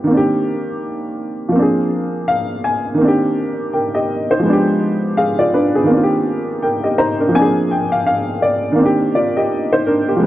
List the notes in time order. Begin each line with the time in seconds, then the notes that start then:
Already playing: F3 G#3 B3 D4 G4 A#4
0.04 D#3 A#3
0.11 C4 D4
0.17 G4
1.49 F3 A#3
1.56 C4 D4
1.62 G#4
2.28 F5
2.64 G#5
2.94 D#3 A#3
3.01 C4 D4
3.08 G4
3.73 A#4 G5
3.95 G4 D#5
4.31 D#4 C5
4.39 F3 G#3
4.46 B3 D4
4.53 G4
5.17 G#4 F5
5.39 F4 D5
5.54 D4 B4
5.75 B3 G#4
5.83 D#3 A#3
5.90 C4 D4
5.97 F4
6.03 G4
6.62 A#4 G5
6.84 G4 D#5
6.98 D#4 C5 A#5
7.20 D4 A#4
7.28 F3 A#3
7.35 C4 D4 G#5
7.42 G#4
7.71 G5
7.92 F5
8.06 F5
8.42 D5
8.72 D#3 A#3
8.79 C4 D4
8.85 G4
9.15 F4 D5
9.37 G4 D#5
9.73 D#4 C5
9.87 D4 A#4
10.09 A#3 G4
10.16 F3 G#3
10.22 B3